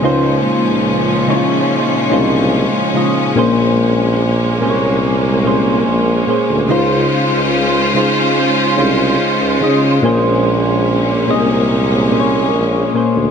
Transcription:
<<
  \new Staff \with { instrumentName = "Synth keys" } { \time 4/4 \key des \major \tempo 4 = 72 <des aes ees' f' c''>4 r8 <des aes ees' fes' f' des''>4 <aes des' ees' f' c''>4 <des aes ees' f' ees''>8 | <bes, bes des' aes' c''>4 r8 <bes, bes des' aes' c'' des''>4 <bes, bes des' aes' c''>4 <bes, bes des' aes' c''>8 | <des aes ees' f' c''>4 r8 <des aes ees' f' c''>4 <aes des' ees' f' c''>4 <des aes ees' f' ees''>8 | <bes, bes des' aes' c''>4 r8 <bes, bes des' aes' ees''>4 <bes, bes des' aes' c'' des''>4 <bes, bes des' aes' c''>8 | }
  \new Staff \with { instrumentName = "String section" } { \time 4/4 \key des \major << { <bes, des'>1~ | <bes, des'>1 | <des' f'>1 | <bes, des'>1 | } \\ { <f aes>1 | bes1 | c''1 | bes1 | } >> }
  \new Staff \with { instrumentName = "Tuba" } { \clef bass \time 4/4 \key des \major des,8 r16 des,4 r8. c,8. r8. | bes,,4. c,4. bes,,8 r16 d,16 | des,8 r16 des,4 r8. c,8 des,16 des,16 des8 | bes,,4. c,4. bes,,8 r16 d,16 | }
>>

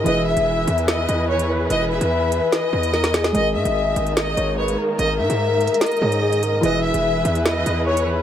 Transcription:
<<
  \new Staff \with { instrumentName = "Violin section" } { \time 4/4 \key e \lydian \tempo 4 = 146 dis''8 e''4. dis''4 cis''8 r8 | dis''8 e''4. dis''2 | dis''8 e''4. dis''4 cis''8 r8 | dis''8 e''4. dis''2 |
dis''8 e''4. dis''4 cis''8 r8 | }
  \new Staff \with { instrumentName = "Soft synth lead" } { \time 4/4 \key e \lydian e''2~ e''8 dis''8 cis''8 b'8 | b'2. ais'8 gis'8 | dis''2~ dis''8 cis''8 b'8 ais'8 | ais'2. gis'8 ais'8 |
e''2~ e''8 dis''8 cis''8 b'8 | }
  \new Staff \with { instrumentName = "Felt piano" } { \time 4/4 \key e \lydian <e e' gis' b'>1~ | <e e' gis' b'>1 | <gis gis' ais'>1~ | <gis gis' ais'>2~ <gis gis' ais'>8 <gis gis' ais' cis''>4. |
<e e' gis' b'>1 | }
  \new Staff \with { instrumentName = "String section" } { \time 4/4 \key e \lydian <e e' gis' b'>1~ | <e e' gis' b'>1 | <dis gis ais>1~ | <dis gis ais>1 |
<e e' gis' b'>1 | }
  \new Staff \with { instrumentName = "808-style bass" } { \clef bass \time 4/4 \key e \lydian e,,8. e,,8. e,4 e,4. | e,,8. e,4 r8. e,4. | gis,,8 gis,16 gis,,8. gis,,4 gis,,4 r8 | gis,,8 gis,16 gis,4 r8. gis,4. |
e,,8. e,,8. e,4 e,4. | }
  \new DrumStaff \with { instrumentName = "Drums" } \drummode { \time 4/4 hh8. hh16 r8 hh16 hh16 <hh sn>8 hh8 r16 hh8. | hh8. hh16 r8 hh8 <hh sn>8. hh16 sn16 <hh sn>16 <hh sn>16 sn16 | hh8. hh16 r8 hh16 hh16 <hh sn>8 hh8 r16 hh8. | hh8. hh16 \tuplet 3/2 { r16 r16 r16 hh16 hh16 hh16 } <hh sn>32 hh32 hh32 hh16. hh16 r16 hh16 hh8 |
hh8. hh16 r8 hh16 hh16 <hh sn>8 hh8 r16 hh8. | }
>>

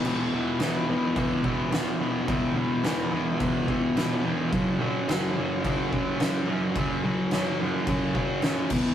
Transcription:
<<
  \new Staff \with { instrumentName = "Distorted electric guitar" } { \clef bass \time 4/4 \key e \mixolydian \tempo 4 = 107 <e, b, e>8 <e, b, e>8 <e, b, e>8 <e, b, e>8 <e, b, e>8 <e, b, e>8 <e, b, e>8 <e, b, e>8 | <e, b, e>8 <e, b, e>8 <e, b, e>8 <e, b, e>8 <e, b, e>8 <e, b, e>8 <e, b, e>8 <e, b, e>8 | <fis, cis fis>8 <fis, cis fis>8 <fis, cis fis>8 <fis, cis fis>8 <fis, cis fis>8 <fis, cis fis>8 <fis, cis fis>8 <fis, cis fis>8 | <fis, cis fis>8 <fis, cis fis>8 <fis, cis fis>8 <fis, cis fis>8 <fis, cis fis>8 <fis, cis fis>8 <fis, cis fis>8 <e, b, e>8 | }
  \new DrumStaff \with { instrumentName = "Drums" } \drummode { \time 4/4 cymc4 <cymc sn>4 <cymc bd>8 bd8 <cymc sn>4 | <cymc bd>4 <cymc sn>4 <cymc bd>8 bd8 <cymc sn>4 | <cymc bd>4 <cymc sn>4 <cymc bd>8 bd8 <cymc sn>4 | <cymc bd>4 <cymc sn>4 <cymc bd>8 bd8 <cymc sn>8 <cymc bd>8 | }
>>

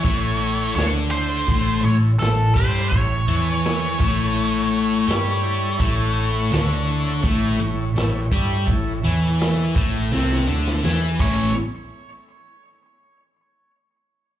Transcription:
<<
  \new Staff \with { instrumentName = "Lead electric guitar" } { \time 4/4 \key a \mixolydian \tempo 4 = 83 cis''4 cis''8 c''4 cis''8 a'8 c''8 | cis''1~ | cis''1~ | cis''2. r8 cis''8 |
r1 | }
  \new Staff \with { instrumentName = "Tonewheel organ" } { \time 4/4 \key a \mixolydian <e' a' cis'' e''>8 <e' a' cis'' e''>8 <e' a' cis'' e''>8 <e' a' cis'' e''>8 <e' a' cis'' fis''>8 <e' a' cis'' e''>8 <e' a' cis'' e''>8 <e' a' cis'' e''>8 | <e' a' cis'' e''>8 <e' a' cis'' e''>8 <e' a' cis'' fis''>8 <e' a' cis'' e''>8 <e' a' cis'' g''>8 <e' a' cis'' g''>8 <e' a' cis'' g''>8 <e' a' cis'' e''>8 | <e' a' cis'' e''>8 <e' a' cis'' fis''>8 <e' a' cis'' e''>8 <e' a' cis'' e''>8 <e' a' cis'' e''>8 <e' a' cis'' e''>8 <e' a' cis'' g''>8 <e' a' cis'' e''>8 | <e' a' cis'' e''>8 <e' a' cis'' fis''>8 <e' a' cis'' e''>8 <e' a' cis'' e''>8 <e' a' cis'' e''>8 <e' a' cis'' e''>8 <e' a' cis'' e''>8 <e' a' cis'' e''>8 |
r1 | }
  \new Staff \with { instrumentName = "Distorted electric guitar" } { \clef bass \time 4/4 \key a \mixolydian <a, a>4 <d d'>4 <a, a>8 a,8 a,8 <g g'>8 | a,8 <e e'>4 <a, a>4. <g g'>4 | <a, a>4 <d d'>4 <a, a>8 a,8 a,8 <g g'>8 | a,8 <e e'>4 <a, a>8 <c c'>8 <d d'>8 <e e'>8 <a, e a cis' e' a'>8 |
r1 | }
  \new Staff \with { instrumentName = "Picked electric bass" } { \clef bass \time 4/4 \key a \mixolydian a,,4 d,4 a,,8 a,,8 a,,8 g,8 | a,,8 e,4 a,,4. g,4 | a,,4 d,4 a,,8 a,,8 a,,8 g,8 | a,,8 e,4 a,,8 c,8 d,8 e,8 a,,8 |
r1 | }
  \new DrumStaff \with { instrumentName = "Drums" } \drummode { \time 4/4 <hho bd>4 <hho sn>4 <hho bd>4 <hho sn>8 bd8 | <hho bd>4 <hho sn>8 bd8 hho4 <hho sn>4 | <hho bd>4 <hho sn>4 <hho bd>4 <hho sn>8 bd8 | <hho bd>4 <hho sn>8 bd8 sn16 sn8 sn16 sn8 <cymc bd>8 |
r4 r4 r4 r4 | }
>>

